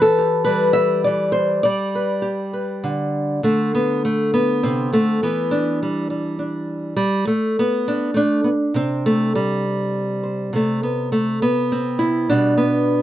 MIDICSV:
0, 0, Header, 1, 2, 480
1, 0, Start_track
1, 0, Tempo, 591716
1, 1330, Time_signature, 3, 2, 24, 8
1, 10563, End_track
2, 0, Start_track
2, 0, Title_t, "Nylon-string guitar"
2, 0, Program_c, 0, 24
2, 0, Note_on_c, 0, 52, 91
2, 0, Note_on_c, 0, 71, 100
2, 13, Note_on_c, 0, 69, 109
2, 149, Note_on_c, 0, 67, 48
2, 351, Note_off_c, 0, 71, 0
2, 361, Note_on_c, 0, 71, 113
2, 373, Note_on_c, 0, 55, 76
2, 590, Note_off_c, 0, 69, 0
2, 593, Note_on_c, 0, 76, 116
2, 842, Note_off_c, 0, 76, 0
2, 846, Note_on_c, 0, 74, 93
2, 849, Note_off_c, 0, 52, 0
2, 866, Note_on_c, 0, 52, 72
2, 1068, Note_off_c, 0, 71, 0
2, 1071, Note_on_c, 0, 72, 96
2, 1307, Note_off_c, 0, 67, 0
2, 1308, Note_off_c, 0, 52, 0
2, 1314, Note_off_c, 0, 74, 0
2, 1319, Note_off_c, 0, 72, 0
2, 1324, Note_on_c, 0, 74, 102
2, 1329, Note_off_c, 0, 55, 0
2, 1338, Note_on_c, 0, 55, 83
2, 1584, Note_on_c, 0, 71, 47
2, 1800, Note_on_c, 0, 67, 69
2, 2045, Note_off_c, 0, 71, 0
2, 2055, Note_on_c, 0, 71, 50
2, 2300, Note_on_c, 0, 50, 68
2, 2746, Note_off_c, 0, 67, 0
2, 2752, Note_off_c, 0, 71, 0
2, 2753, Note_off_c, 0, 50, 0
2, 2776, Note_off_c, 0, 74, 0
2, 2783, Note_off_c, 0, 55, 0
2, 2784, Note_on_c, 0, 50, 73
2, 2791, Note_on_c, 0, 57, 75
2, 3027, Note_off_c, 0, 57, 0
2, 3039, Note_on_c, 0, 59, 80
2, 3271, Note_off_c, 0, 59, 0
2, 3283, Note_on_c, 0, 57, 86
2, 3514, Note_off_c, 0, 57, 0
2, 3518, Note_on_c, 0, 59, 89
2, 3758, Note_on_c, 0, 60, 83
2, 3766, Note_on_c, 0, 48, 60
2, 3985, Note_off_c, 0, 50, 0
2, 3993, Note_off_c, 0, 59, 0
2, 3995, Note_on_c, 0, 50, 56
2, 3996, Note_off_c, 0, 48, 0
2, 4002, Note_on_c, 0, 57, 87
2, 4230, Note_off_c, 0, 50, 0
2, 4232, Note_off_c, 0, 60, 0
2, 4233, Note_off_c, 0, 57, 0
2, 4241, Note_on_c, 0, 52, 76
2, 4244, Note_on_c, 0, 59, 85
2, 4471, Note_on_c, 0, 62, 92
2, 4708, Note_off_c, 0, 59, 0
2, 4725, Note_on_c, 0, 55, 52
2, 4946, Note_off_c, 0, 55, 0
2, 4949, Note_on_c, 0, 55, 44
2, 5173, Note_off_c, 0, 62, 0
2, 5183, Note_on_c, 0, 62, 46
2, 5625, Note_off_c, 0, 62, 0
2, 5629, Note_off_c, 0, 52, 0
2, 5647, Note_off_c, 0, 55, 0
2, 5650, Note_on_c, 0, 55, 99
2, 5888, Note_off_c, 0, 55, 0
2, 5901, Note_on_c, 0, 57, 79
2, 6132, Note_off_c, 0, 57, 0
2, 6158, Note_on_c, 0, 59, 94
2, 6391, Note_on_c, 0, 62, 94
2, 6601, Note_off_c, 0, 59, 0
2, 6604, Note_on_c, 0, 57, 65
2, 6616, Note_off_c, 0, 62, 0
2, 6624, Note_on_c, 0, 62, 98
2, 6842, Note_off_c, 0, 57, 0
2, 6847, Note_on_c, 0, 59, 57
2, 6882, Note_off_c, 0, 59, 0
2, 7092, Note_on_c, 0, 48, 72
2, 7093, Note_off_c, 0, 62, 0
2, 7106, Note_on_c, 0, 60, 96
2, 7349, Note_on_c, 0, 57, 86
2, 7577, Note_off_c, 0, 57, 0
2, 7588, Note_on_c, 0, 55, 78
2, 7818, Note_off_c, 0, 60, 0
2, 8301, Note_on_c, 0, 72, 37
2, 8509, Note_off_c, 0, 48, 0
2, 8509, Note_off_c, 0, 72, 0
2, 8540, Note_on_c, 0, 48, 67
2, 8545, Note_off_c, 0, 55, 0
2, 8562, Note_on_c, 0, 57, 82
2, 8783, Note_off_c, 0, 57, 0
2, 8786, Note_on_c, 0, 59, 70
2, 9017, Note_off_c, 0, 59, 0
2, 9021, Note_on_c, 0, 57, 85
2, 9259, Note_off_c, 0, 57, 0
2, 9265, Note_on_c, 0, 59, 88
2, 9506, Note_on_c, 0, 60, 89
2, 9725, Note_on_c, 0, 64, 96
2, 9953, Note_off_c, 0, 48, 0
2, 9970, Note_off_c, 0, 60, 0
2, 9972, Note_off_c, 0, 64, 0
2, 9973, Note_on_c, 0, 62, 93
2, 9979, Note_on_c, 0, 47, 72
2, 9983, Note_off_c, 0, 59, 0
2, 9989, Note_on_c, 0, 55, 50
2, 10197, Note_off_c, 0, 55, 0
2, 10201, Note_on_c, 0, 59, 77
2, 10563, Note_off_c, 0, 47, 0
2, 10563, Note_off_c, 0, 59, 0
2, 10563, Note_off_c, 0, 62, 0
2, 10563, End_track
0, 0, End_of_file